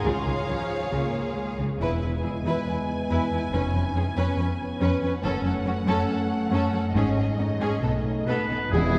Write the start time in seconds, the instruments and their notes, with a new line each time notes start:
Already playing: violin section G#4
0.05 double bass section C#2, cello section C#3, viola section G#3 F4, violin section C#5 F5
0.26 double bass section C#2, cello section C#3, viola section G#3
0.48 double bass section C#2, cello section C#3, viola section F3
0.92 double bass section C#2, cello section C#3, viola section A#3
1.37 viola section G#3
1.58 double bass section C#2, cello section C#3
1.80 double bass section E1, cello section E2, french horn section G#3 B3, viola section E4, violin section B4 G#5
2.02 cello section E2, viola section E4, violin section B4
2.23 cello section E2, viola section E4, violin section G#4
2.45 cello section E2, viola section E4, violin section B4
2.66 cello section E2, viola section E4, violin section B4
3.10 cello section E2, viola section E4, violin section B4
3.31 cello section E2, viola section E4, violin section B4
3.52 double bass section F1, cello section F2, french horn section B3 C#4, viola section C#4, violin section B4
3.74 cello section F2, viola section C#4, violin section B4
3.95 cello section F2, viola section C#4, violin section G#4
4.16 cello section F2, viola section C#4, violin section B4
4.37 cello section F2, viola section C#4, violin section B4
4.80 cello section F2, viola section C#4, violin section B4
5.01 cello section F2, viola section C#4, violin section B4
5.23 double bass section F#1, cello section F#2, french horn section A3, viola section C#4, violin section A4 F#5
5.44 cello section F#2, viola section C#4, violin section A4
5.66 cello section F#2, viola section C#4, violin section F#4
5.87 cello section F#2, viola section C#4, violin section A4
6.08 cello section F#2, viola section C#4, violin section A4
6.51 cello section F#2, viola section C#4, violin section A4
6.72 cello section F#2, viola section C#4, violin section A4
6.94 double bass section G#1, cello section G#2, french horn section G#3 C#4, viola section C#4, violin section G#4 D#5
7.16 cello section G#2, viola section C#4, violin section G#4
7.38 cello section G#2, viola section C#4, violin section D#4
7.59 cello section G#2, viola section C#4, violin section G#4
7.81 double bass section B1, cello section B2, french horn section A3 D#4, viola section B3, violin section A4
8.26 cello section B2, viola section B3, violin section A4, oboe B4
8.49 cello section B2, viola section B3, violin section A4
8.70 double bass section E1, cello section E2, timpani E2, french horn section G#3 E4, viola section B3 G#4, violin section E4 G#5, oboe G#4
8.93 viola section B3 G#4, violin section G#5